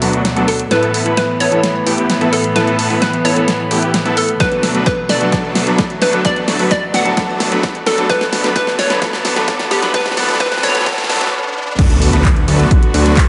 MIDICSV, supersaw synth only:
0, 0, Header, 1, 2, 480
1, 0, Start_track
1, 0, Key_signature, 2, "major"
1, 0, Tempo, 461538
1, 739, Time_signature, 4, 2, 24, 8
1, 13815, End_track
2, 0, Start_track
2, 0, Title_t, "Supersaw synth"
2, 0, Program_c, 0, 81
2, 18, Note_on_c, 0, 57, 68
2, 18, Note_on_c, 0, 62, 69
2, 19, Note_on_c, 0, 54, 73
2, 19, Note_on_c, 0, 59, 70
2, 19, Note_on_c, 0, 66, 86
2, 229, Note_off_c, 0, 57, 0
2, 229, Note_off_c, 0, 62, 0
2, 230, Note_off_c, 0, 54, 0
2, 230, Note_off_c, 0, 59, 0
2, 230, Note_off_c, 0, 66, 0
2, 378, Note_on_c, 0, 54, 100
2, 378, Note_on_c, 0, 57, 96
2, 378, Note_on_c, 0, 59, 90
2, 378, Note_on_c, 0, 62, 93
2, 378, Note_on_c, 0, 69, 106
2, 510, Note_off_c, 0, 54, 0
2, 510, Note_off_c, 0, 57, 0
2, 510, Note_off_c, 0, 59, 0
2, 510, Note_off_c, 0, 62, 0
2, 510, Note_off_c, 0, 69, 0
2, 739, Note_on_c, 0, 59, 92
2, 739, Note_on_c, 0, 64, 81
2, 740, Note_on_c, 0, 69, 97
2, 1070, Note_off_c, 0, 64, 0
2, 1071, Note_off_c, 0, 59, 0
2, 1071, Note_off_c, 0, 69, 0
2, 1098, Note_on_c, 0, 71, 93
2, 1099, Note_on_c, 0, 59, 83
2, 1099, Note_on_c, 0, 64, 77
2, 1230, Note_off_c, 0, 71, 0
2, 1231, Note_off_c, 0, 59, 0
2, 1231, Note_off_c, 0, 64, 0
2, 1459, Note_on_c, 0, 59, 86
2, 1459, Note_on_c, 0, 64, 81
2, 1459, Note_on_c, 0, 69, 98
2, 1670, Note_off_c, 0, 59, 0
2, 1670, Note_off_c, 0, 64, 0
2, 1670, Note_off_c, 0, 69, 0
2, 1938, Note_on_c, 0, 67, 84
2, 1939, Note_on_c, 0, 59, 77
2, 1939, Note_on_c, 0, 64, 68
2, 2149, Note_off_c, 0, 64, 0
2, 2149, Note_off_c, 0, 67, 0
2, 2150, Note_off_c, 0, 59, 0
2, 2297, Note_on_c, 0, 69, 111
2, 2298, Note_on_c, 0, 59, 99
2, 2298, Note_on_c, 0, 64, 91
2, 2430, Note_off_c, 0, 59, 0
2, 2430, Note_off_c, 0, 64, 0
2, 2430, Note_off_c, 0, 69, 0
2, 2657, Note_on_c, 0, 59, 92
2, 2657, Note_on_c, 0, 69, 99
2, 2658, Note_on_c, 0, 64, 80
2, 2990, Note_off_c, 0, 59, 0
2, 2990, Note_off_c, 0, 64, 0
2, 2990, Note_off_c, 0, 69, 0
2, 3017, Note_on_c, 0, 59, 86
2, 3017, Note_on_c, 0, 64, 74
2, 3017, Note_on_c, 0, 71, 93
2, 3150, Note_off_c, 0, 59, 0
2, 3150, Note_off_c, 0, 64, 0
2, 3150, Note_off_c, 0, 71, 0
2, 3376, Note_on_c, 0, 59, 85
2, 3376, Note_on_c, 0, 69, 98
2, 3377, Note_on_c, 0, 64, 83
2, 3588, Note_off_c, 0, 59, 0
2, 3588, Note_off_c, 0, 69, 0
2, 3589, Note_off_c, 0, 64, 0
2, 3856, Note_on_c, 0, 59, 76
2, 3856, Note_on_c, 0, 64, 73
2, 3856, Note_on_c, 0, 67, 85
2, 4068, Note_off_c, 0, 59, 0
2, 4068, Note_off_c, 0, 64, 0
2, 4068, Note_off_c, 0, 67, 0
2, 4216, Note_on_c, 0, 59, 100
2, 4216, Note_on_c, 0, 64, 93
2, 4216, Note_on_c, 0, 69, 112
2, 4349, Note_off_c, 0, 59, 0
2, 4349, Note_off_c, 0, 64, 0
2, 4349, Note_off_c, 0, 69, 0
2, 4576, Note_on_c, 0, 57, 77
2, 4577, Note_on_c, 0, 54, 81
2, 4577, Note_on_c, 0, 59, 75
2, 4577, Note_on_c, 0, 62, 78
2, 4577, Note_on_c, 0, 69, 95
2, 4909, Note_off_c, 0, 54, 0
2, 4909, Note_off_c, 0, 57, 0
2, 4909, Note_off_c, 0, 59, 0
2, 4909, Note_off_c, 0, 62, 0
2, 4909, Note_off_c, 0, 69, 0
2, 4937, Note_on_c, 0, 54, 76
2, 4937, Note_on_c, 0, 57, 72
2, 4937, Note_on_c, 0, 59, 72
2, 4937, Note_on_c, 0, 71, 85
2, 4938, Note_on_c, 0, 62, 69
2, 5070, Note_off_c, 0, 54, 0
2, 5070, Note_off_c, 0, 57, 0
2, 5070, Note_off_c, 0, 59, 0
2, 5070, Note_off_c, 0, 62, 0
2, 5070, Note_off_c, 0, 71, 0
2, 5297, Note_on_c, 0, 54, 83
2, 5297, Note_on_c, 0, 57, 74
2, 5297, Note_on_c, 0, 59, 72
2, 5297, Note_on_c, 0, 62, 72
2, 5297, Note_on_c, 0, 69, 93
2, 5508, Note_off_c, 0, 59, 0
2, 5509, Note_off_c, 0, 54, 0
2, 5509, Note_off_c, 0, 57, 0
2, 5509, Note_off_c, 0, 62, 0
2, 5509, Note_off_c, 0, 69, 0
2, 5538, Note_on_c, 0, 54, 89
2, 5538, Note_on_c, 0, 57, 81
2, 5538, Note_on_c, 0, 59, 81
2, 5538, Note_on_c, 0, 62, 79
2, 5538, Note_on_c, 0, 69, 97
2, 5870, Note_off_c, 0, 54, 0
2, 5870, Note_off_c, 0, 57, 0
2, 5870, Note_off_c, 0, 59, 0
2, 5870, Note_off_c, 0, 62, 0
2, 5870, Note_off_c, 0, 69, 0
2, 5898, Note_on_c, 0, 71, 86
2, 5899, Note_on_c, 0, 54, 79
2, 5899, Note_on_c, 0, 57, 71
2, 5899, Note_on_c, 0, 59, 70
2, 5899, Note_on_c, 0, 62, 69
2, 6030, Note_off_c, 0, 71, 0
2, 6031, Note_off_c, 0, 54, 0
2, 6031, Note_off_c, 0, 57, 0
2, 6031, Note_off_c, 0, 59, 0
2, 6031, Note_off_c, 0, 62, 0
2, 6258, Note_on_c, 0, 59, 81
2, 6258, Note_on_c, 0, 69, 97
2, 6259, Note_on_c, 0, 54, 85
2, 6259, Note_on_c, 0, 57, 81
2, 6259, Note_on_c, 0, 62, 81
2, 6469, Note_off_c, 0, 57, 0
2, 6469, Note_off_c, 0, 59, 0
2, 6469, Note_off_c, 0, 62, 0
2, 6469, Note_off_c, 0, 69, 0
2, 6470, Note_off_c, 0, 54, 0
2, 6499, Note_on_c, 0, 54, 82
2, 6500, Note_on_c, 0, 57, 82
2, 6500, Note_on_c, 0, 59, 79
2, 6500, Note_on_c, 0, 62, 77
2, 6500, Note_on_c, 0, 69, 94
2, 6831, Note_off_c, 0, 54, 0
2, 6831, Note_off_c, 0, 57, 0
2, 6831, Note_off_c, 0, 59, 0
2, 6831, Note_off_c, 0, 62, 0
2, 6831, Note_off_c, 0, 69, 0
2, 6859, Note_on_c, 0, 54, 77
2, 6859, Note_on_c, 0, 62, 71
2, 6859, Note_on_c, 0, 71, 92
2, 6860, Note_on_c, 0, 57, 74
2, 6860, Note_on_c, 0, 59, 75
2, 6991, Note_off_c, 0, 54, 0
2, 6991, Note_off_c, 0, 57, 0
2, 6991, Note_off_c, 0, 59, 0
2, 6991, Note_off_c, 0, 62, 0
2, 6991, Note_off_c, 0, 71, 0
2, 7219, Note_on_c, 0, 54, 85
2, 7219, Note_on_c, 0, 57, 76
2, 7219, Note_on_c, 0, 59, 73
2, 7219, Note_on_c, 0, 62, 76
2, 7219, Note_on_c, 0, 69, 95
2, 7430, Note_off_c, 0, 54, 0
2, 7430, Note_off_c, 0, 57, 0
2, 7430, Note_off_c, 0, 59, 0
2, 7430, Note_off_c, 0, 62, 0
2, 7430, Note_off_c, 0, 69, 0
2, 7459, Note_on_c, 0, 57, 83
2, 7459, Note_on_c, 0, 62, 85
2, 7460, Note_on_c, 0, 54, 89
2, 7460, Note_on_c, 0, 59, 82
2, 7460, Note_on_c, 0, 69, 99
2, 7791, Note_off_c, 0, 54, 0
2, 7791, Note_off_c, 0, 57, 0
2, 7791, Note_off_c, 0, 59, 0
2, 7791, Note_off_c, 0, 62, 0
2, 7791, Note_off_c, 0, 69, 0
2, 7819, Note_on_c, 0, 54, 81
2, 7819, Note_on_c, 0, 62, 74
2, 7820, Note_on_c, 0, 57, 71
2, 7820, Note_on_c, 0, 59, 72
2, 7820, Note_on_c, 0, 71, 92
2, 7951, Note_off_c, 0, 54, 0
2, 7951, Note_off_c, 0, 57, 0
2, 7951, Note_off_c, 0, 59, 0
2, 7951, Note_off_c, 0, 62, 0
2, 7951, Note_off_c, 0, 71, 0
2, 8180, Note_on_c, 0, 54, 93
2, 8180, Note_on_c, 0, 57, 80
2, 8180, Note_on_c, 0, 59, 83
2, 8180, Note_on_c, 0, 62, 80
2, 8180, Note_on_c, 0, 69, 98
2, 8390, Note_off_c, 0, 54, 0
2, 8390, Note_off_c, 0, 57, 0
2, 8390, Note_off_c, 0, 59, 0
2, 8390, Note_off_c, 0, 62, 0
2, 8390, Note_off_c, 0, 69, 0
2, 8420, Note_on_c, 0, 54, 85
2, 8420, Note_on_c, 0, 57, 83
2, 8420, Note_on_c, 0, 59, 79
2, 8420, Note_on_c, 0, 62, 80
2, 8420, Note_on_c, 0, 69, 97
2, 8751, Note_off_c, 0, 54, 0
2, 8751, Note_off_c, 0, 57, 0
2, 8751, Note_off_c, 0, 59, 0
2, 8751, Note_off_c, 0, 62, 0
2, 8751, Note_off_c, 0, 69, 0
2, 8779, Note_on_c, 0, 54, 87
2, 8779, Note_on_c, 0, 57, 77
2, 8779, Note_on_c, 0, 59, 79
2, 8779, Note_on_c, 0, 62, 75
2, 8779, Note_on_c, 0, 71, 88
2, 8880, Note_off_c, 0, 54, 0
2, 8880, Note_off_c, 0, 57, 0
2, 8880, Note_off_c, 0, 59, 0
2, 8880, Note_off_c, 0, 62, 0
2, 8880, Note_off_c, 0, 71, 0
2, 8899, Note_on_c, 0, 54, 93
2, 8899, Note_on_c, 0, 57, 87
2, 8899, Note_on_c, 0, 59, 82
2, 8899, Note_on_c, 0, 62, 85
2, 8899, Note_on_c, 0, 69, 101
2, 9230, Note_off_c, 0, 59, 0
2, 9230, Note_off_c, 0, 69, 0
2, 9231, Note_off_c, 0, 54, 0
2, 9231, Note_off_c, 0, 57, 0
2, 9231, Note_off_c, 0, 62, 0
2, 9257, Note_on_c, 0, 59, 83
2, 9257, Note_on_c, 0, 71, 100
2, 9258, Note_on_c, 0, 54, 85
2, 9258, Note_on_c, 0, 57, 81
2, 9258, Note_on_c, 0, 62, 78
2, 9359, Note_off_c, 0, 54, 0
2, 9359, Note_off_c, 0, 57, 0
2, 9359, Note_off_c, 0, 59, 0
2, 9359, Note_off_c, 0, 62, 0
2, 9359, Note_off_c, 0, 71, 0
2, 9378, Note_on_c, 0, 54, 94
2, 9378, Note_on_c, 0, 57, 84
2, 9378, Note_on_c, 0, 59, 91
2, 9378, Note_on_c, 0, 62, 85
2, 9378, Note_on_c, 0, 69, 104
2, 9710, Note_off_c, 0, 54, 0
2, 9710, Note_off_c, 0, 57, 0
2, 9710, Note_off_c, 0, 59, 0
2, 9710, Note_off_c, 0, 62, 0
2, 9710, Note_off_c, 0, 69, 0
2, 9737, Note_on_c, 0, 57, 77
2, 9737, Note_on_c, 0, 71, 95
2, 9738, Note_on_c, 0, 54, 84
2, 9738, Note_on_c, 0, 59, 79
2, 9738, Note_on_c, 0, 62, 79
2, 9839, Note_off_c, 0, 54, 0
2, 9839, Note_off_c, 0, 57, 0
2, 9839, Note_off_c, 0, 71, 0
2, 9840, Note_off_c, 0, 59, 0
2, 9840, Note_off_c, 0, 62, 0
2, 9857, Note_on_c, 0, 54, 92
2, 9857, Note_on_c, 0, 57, 84
2, 9857, Note_on_c, 0, 59, 86
2, 9857, Note_on_c, 0, 62, 86
2, 9857, Note_on_c, 0, 69, 104
2, 10189, Note_off_c, 0, 54, 0
2, 10189, Note_off_c, 0, 59, 0
2, 10189, Note_off_c, 0, 62, 0
2, 10189, Note_off_c, 0, 69, 0
2, 10190, Note_off_c, 0, 57, 0
2, 10218, Note_on_c, 0, 54, 85
2, 10218, Note_on_c, 0, 57, 74
2, 10218, Note_on_c, 0, 59, 77
2, 10218, Note_on_c, 0, 62, 78
2, 10218, Note_on_c, 0, 71, 93
2, 10319, Note_off_c, 0, 57, 0
2, 10319, Note_off_c, 0, 59, 0
2, 10319, Note_off_c, 0, 71, 0
2, 10320, Note_off_c, 0, 54, 0
2, 10320, Note_off_c, 0, 62, 0
2, 10336, Note_on_c, 0, 54, 92
2, 10336, Note_on_c, 0, 59, 84
2, 10336, Note_on_c, 0, 62, 86
2, 10336, Note_on_c, 0, 69, 102
2, 10337, Note_on_c, 0, 57, 83
2, 10558, Note_off_c, 0, 59, 0
2, 10558, Note_off_c, 0, 62, 0
2, 10559, Note_off_c, 0, 54, 0
2, 10559, Note_off_c, 0, 57, 0
2, 10559, Note_off_c, 0, 69, 0
2, 10575, Note_on_c, 0, 59, 92
2, 10575, Note_on_c, 0, 69, 109
2, 10576, Note_on_c, 0, 54, 98
2, 10576, Note_on_c, 0, 57, 90
2, 10576, Note_on_c, 0, 62, 89
2, 10798, Note_off_c, 0, 54, 0
2, 10798, Note_off_c, 0, 57, 0
2, 10798, Note_off_c, 0, 59, 0
2, 10798, Note_off_c, 0, 69, 0
2, 10799, Note_off_c, 0, 62, 0
2, 10815, Note_on_c, 0, 59, 89
2, 10816, Note_on_c, 0, 54, 97
2, 10816, Note_on_c, 0, 57, 90
2, 10816, Note_on_c, 0, 69, 104
2, 10817, Note_on_c, 0, 62, 87
2, 11038, Note_off_c, 0, 59, 0
2, 11038, Note_off_c, 0, 69, 0
2, 11039, Note_off_c, 0, 54, 0
2, 11039, Note_off_c, 0, 57, 0
2, 11039, Note_off_c, 0, 62, 0
2, 11056, Note_on_c, 0, 54, 100
2, 11056, Note_on_c, 0, 57, 90
2, 11056, Note_on_c, 0, 59, 88
2, 11056, Note_on_c, 0, 62, 91
2, 11056, Note_on_c, 0, 69, 103
2, 11278, Note_off_c, 0, 54, 0
2, 11278, Note_off_c, 0, 57, 0
2, 11278, Note_off_c, 0, 59, 0
2, 11278, Note_off_c, 0, 69, 0
2, 11279, Note_off_c, 0, 62, 0
2, 11295, Note_on_c, 0, 57, 90
2, 11295, Note_on_c, 0, 62, 93
2, 11295, Note_on_c, 0, 69, 106
2, 11296, Note_on_c, 0, 54, 95
2, 11296, Note_on_c, 0, 59, 89
2, 11518, Note_off_c, 0, 54, 0
2, 11518, Note_off_c, 0, 57, 0
2, 11518, Note_off_c, 0, 59, 0
2, 11518, Note_off_c, 0, 62, 0
2, 11518, Note_off_c, 0, 69, 0
2, 11535, Note_on_c, 0, 54, 98
2, 11535, Note_on_c, 0, 57, 89
2, 11535, Note_on_c, 0, 59, 89
2, 11535, Note_on_c, 0, 62, 88
2, 11535, Note_on_c, 0, 69, 102
2, 11758, Note_off_c, 0, 54, 0
2, 11758, Note_off_c, 0, 57, 0
2, 11758, Note_off_c, 0, 59, 0
2, 11758, Note_off_c, 0, 62, 0
2, 11758, Note_off_c, 0, 69, 0
2, 12257, Note_on_c, 0, 54, 89
2, 12257, Note_on_c, 0, 57, 83
2, 12257, Note_on_c, 0, 69, 102
2, 12258, Note_on_c, 0, 59, 86
2, 12258, Note_on_c, 0, 62, 85
2, 12590, Note_off_c, 0, 54, 0
2, 12590, Note_off_c, 0, 57, 0
2, 12590, Note_off_c, 0, 59, 0
2, 12590, Note_off_c, 0, 62, 0
2, 12590, Note_off_c, 0, 69, 0
2, 12617, Note_on_c, 0, 57, 80
2, 12617, Note_on_c, 0, 59, 79
2, 12617, Note_on_c, 0, 62, 76
2, 12617, Note_on_c, 0, 71, 93
2, 12618, Note_on_c, 0, 54, 87
2, 12750, Note_off_c, 0, 54, 0
2, 12750, Note_off_c, 0, 57, 0
2, 12750, Note_off_c, 0, 59, 0
2, 12750, Note_off_c, 0, 62, 0
2, 12750, Note_off_c, 0, 71, 0
2, 12977, Note_on_c, 0, 54, 89
2, 12977, Note_on_c, 0, 57, 83
2, 12977, Note_on_c, 0, 59, 79
2, 12977, Note_on_c, 0, 62, 80
2, 12977, Note_on_c, 0, 69, 97
2, 13188, Note_off_c, 0, 54, 0
2, 13188, Note_off_c, 0, 57, 0
2, 13188, Note_off_c, 0, 59, 0
2, 13188, Note_off_c, 0, 69, 0
2, 13189, Note_off_c, 0, 62, 0
2, 13457, Note_on_c, 0, 54, 74
2, 13457, Note_on_c, 0, 57, 71
2, 13457, Note_on_c, 0, 59, 68
2, 13457, Note_on_c, 0, 62, 70
2, 13457, Note_on_c, 0, 66, 82
2, 13668, Note_off_c, 0, 57, 0
2, 13669, Note_off_c, 0, 54, 0
2, 13669, Note_off_c, 0, 59, 0
2, 13669, Note_off_c, 0, 62, 0
2, 13669, Note_off_c, 0, 66, 0
2, 13815, End_track
0, 0, End_of_file